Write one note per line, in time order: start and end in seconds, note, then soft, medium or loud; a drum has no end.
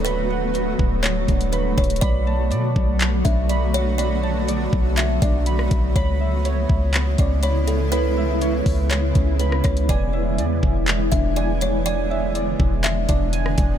0.00 0.75 D1 loud
0.00 1.98 D3 medium
0.00 1.99 F#3 medium
0.00 1.98 A3 medium
0.00 1.99 B3 medium
0.00 0.79 D4 medium
0.00 1.99 F#4 loud
0.05 0.99 B4 loud
0.05 1.52 B5 medium
0.05 closed hi-hat medium
0.30 1.77 F#5 medium
0.55 2.02 B4 medium
0.55 closed hi-hat medium
0.79 1.27 D1 loud
0.79 kick medium
1.03 1.50 C#5 medium
1.03 clap loud
1.03 closed hi-hat medium
1.28 1.76 D1 loud
1.28 2.02 D4 medium
1.28 kick medium
1.28 closed hi-hat medium
1.41 closed hi-hat medium
1.53 1.76 B4 medium
1.53 2.01 B5 medium
1.53 closed hi-hat medium
1.78 2.01 D1 loud
1.78 2.01 C#5 medium
1.78 kick loud
1.78 closed hi-hat soft
1.84 closed hi-hat medium
1.90 closed hi-hat medium
1.96 closed hi-hat medium
2.01 2.53 B1 loud
2.01 5.92 D3 medium
2.01 5.92 F#3 medium
2.01 5.92 A3 medium
2.01 13.78 B3 medium
2.01 5.92 F#4 medium
2.01 3.21 D5 loud
2.01 3.49 B5 loud
2.01 kick loud
2.01 closed hi-hat medium
2.27 3.74 A5 medium
2.51 2.75 B2 loud
2.51 3.99 D5 loud
2.51 closed hi-hat medium
2.76 3.23 B1 loud
2.76 kick medium
3.00 clap loud
3.00 closed hi-hat medium
3.25 4.69 B1 loud
3.25 4.73 D4 medium
3.25 3.48 E5 medium
3.25 kick medium
3.25 closed hi-hat medium
3.49 3.73 D5 medium
3.49 3.97 B5 loud
3.49 closed hi-hat medium
3.74 3.98 C#5 loud
3.74 closed hi-hat medium
3.98 4.93 D5 loud
3.98 5.45 B5 loud
3.98 closed hi-hat medium
4.23 5.71 A5 medium
4.48 5.96 D5 medium
4.48 closed hi-hat medium
4.73 5.20 B1 loud
4.73 kick medium
4.97 5.21 E5 medium
4.97 clap loud
4.97 closed hi-hat medium
5.22 5.69 B1 loud
5.22 5.96 D4 medium
5.22 5.45 D5 medium
5.22 kick medium
5.22 closed hi-hat medium
5.46 5.95 B5 loud
5.46 closed hi-hat medium
5.59 cross-stick medium
5.71 5.95 B1 loud
5.71 kick loud
5.71 closed hi-hat medium
5.96 6.67 C#2 loud
5.96 9.85 C#3 medium
5.96 13.78 E3 medium
5.96 13.78 G#3 medium
5.96 9.85 E4 loud
5.96 7.15 C#5 loud
5.96 7.41 B5 loud
5.96 kick loud
5.96 closed hi-hat medium
6.21 7.68 E5 medium
6.45 7.92 C#5 medium
6.45 closed hi-hat medium
6.69 7.17 C#2 loud
6.69 kick medium
6.94 clap loud
6.94 closed hi-hat medium
7.18 8.62 C#2 loud
7.18 8.66 C#4 medium
7.18 7.42 D5 medium
7.18 kick medium
7.18 closed hi-hat medium
7.43 7.67 C#5 medium
7.43 7.91 B5 medium
7.43 closed hi-hat medium
7.68 7.91 A4 medium
7.68 closed hi-hat medium
7.92 8.86 B4 loud
7.92 9.39 B5 medium
7.92 closed hi-hat medium
8.17 9.65 E5 medium
8.42 9.89 C#5 medium
8.42 closed hi-hat medium
8.66 9.13 C#2 loud
8.66 kick medium
8.66 open hi-hat medium
8.91 9.37 C#5 medium
8.91 clap loud
8.91 closed hi-hat medium
9.15 9.63 C#2 loud
9.15 9.89 C#4 medium
9.15 kick medium
9.15 closed hi-hat medium
9.39 9.63 B4 medium
9.39 9.89 B5 loud
9.39 closed hi-hat medium
9.52 cross-stick loud
9.64 9.88 C#2 loud
9.64 9.88 C#5 medium
9.64 kick loud
9.64 cross-stick loud
9.64 closed hi-hat medium
9.77 closed hi-hat medium
9.89 10.40 E1 loud
9.89 13.78 D3 medium
9.89 11.84 E4 loud
9.89 11.08 D5 loud
9.89 11.35 G#5 loud
9.89 kick loud
9.89 closed hi-hat medium
10.13 11.61 E5 medium
10.38 10.62 E2 loud
10.38 11.86 D5 medium
10.38 closed hi-hat medium
10.63 11.10 E1 loud
10.63 kick medium
10.87 clap loud
10.87 closed hi-hat medium
11.12 12.56 E1 loud
11.12 12.60 D4 medium
11.12 11.35 E5 medium
11.12 kick medium
11.12 closed hi-hat medium
11.36 11.60 D5 medium
11.36 11.85 G#5 loud
11.36 closed hi-hat medium
11.61 11.85 C#5 medium
11.61 closed hi-hat medium
11.86 13.78 D4 loud
11.86 12.80 D5 loud
11.86 13.32 G#5 loud
11.86 closed hi-hat medium
12.10 13.58 E5 loud
12.35 13.78 D5 medium
12.35 closed hi-hat medium
12.60 13.07 E1 loud
12.60 kick medium
12.84 13.07 E5 medium
12.84 clap loud
12.84 closed hi-hat medium
13.09 13.56 E1 loud
13.09 13.78 D4 medium
13.09 13.32 D5 medium
13.09 kick medium
13.09 closed hi-hat medium
13.33 13.78 G#5 loud
13.33 closed hi-hat medium
13.46 cross-stick medium
13.58 13.78 E1 loud
13.58 kick loud
13.58 closed hi-hat medium